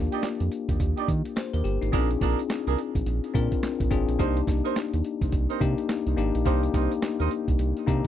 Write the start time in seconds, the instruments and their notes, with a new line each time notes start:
Already playing: tine electric piano A#3 D4 F4 G4
0.12 horn section D4 D#4 G4 D5, closed hi-hat
0.23 snare, clap, closed hi-hat
0.40 analog synth bass F2, closed hi-hat
0.52 closed hi-hat
0.69 analog synth bass D#2, kick, closed hi-hat
0.80 analog synth bass D#2, kick, closed hi-hat
0.97 horn section D4 D#4 G4 D5, closed hi-hat
1.08 analog synth bass D#3, kick, closed hi-hat
1.25 closed hi-hat
1.36 tine electric piano C5, snare, clap, closed hi-hat
1.54 analog synth bass D#2, tine electric piano A#4, closed hi-hat
1.64 analog synth bass G1, tine electric piano G4, closed hi-hat
1.82 analog synth bass G#1, tine electric piano D#4, closed hi-hat
1.92 analog synth bass A#1, horn section A#3 D4 G#4 A#4, tine electric piano C4 C#4 F4 G#4, kick, closed hi-hat
1.99 tine electric piano D4
2.11 closed hi-hat
2.21 analog synth bass A#1, horn section A#3 D4 G#4 A#4, kick, snare, closed hi-hat
2.39 closed hi-hat
2.50 snare, clap, closed hi-hat
2.67 analog synth bass C2, horn section A#3 D4 G#4 A#4, closed hi-hat
2.78 closed hi-hat
2.95 analog synth bass A#1, kick, closed hi-hat
3.06 analog synth bass A#1, closed hi-hat
3.24 closed hi-hat
3.34 analog synth bass A#2, tine electric piano C4 D4 F4 A#4, kick, closed hi-hat
3.52 kick, closed hi-hat
3.63 snare, clap, closed hi-hat
3.80 analog synth bass A#1, kick, closed hi-hat
3.90 analog synth bass G#1, tine electric piano C4 D4 F4 G#4, kick, closed hi-hat
4.08 analog synth bass A#1, closed hi-hat
4.19 analog synth bass C2, tine electric piano A#3 D4 D#4 G4, horn section C4 D#4 A#4 C5, kick, closed hi-hat
4.37 closed hi-hat
4.47 analog synth bass C2, kick, snare, closed hi-hat
4.65 horn section C4 D#4 A#4 C5, closed hi-hat
4.76 snare, clap, closed hi-hat
4.93 analog synth bass D#2, closed hi-hat
5.04 closed hi-hat
5.21 analog synth bass C2, kick, closed hi-hat
5.32 analog synth bass C2, kick, closed hi-hat
5.49 horn section C4 D#4 A#4 C5, closed hi-hat
5.60 analog synth bass C3, tine electric piano A#3 D4 D#4 G4, kick, closed hi-hat
5.78 closed hi-hat
5.89 snare, clap, closed hi-hat
6.07 analog synth bass C2, closed hi-hat
6.17 analog synth bass G#1, tine electric piano A#3 D4 D#4 G4, closed hi-hat
6.35 analog synth bass A#1, closed hi-hat
6.45 analog synth bass C2, tine electric piano A#3 D4 D#4 G4, horn section C4 D#4 A#4 C5, kick, closed hi-hat
6.63 closed hi-hat
6.74 analog synth bass C2, horn section C4 D#4 A#4 C5, kick, snare, closed hi-hat
6.91 closed hi-hat
7.02 snare, clap, closed hi-hat
7.20 analog synth bass D#2, horn section C4 D#4 A#4 C5, closed hi-hat
7.31 closed hi-hat
7.48 analog synth bass C2, kick, closed hi-hat
7.59 analog synth bass C2, closed hi-hat
7.77 closed hi-hat
7.87 analog synth bass C3, tine electric piano A#3 D4 D#4 G4 A#5, kick, closed hi-hat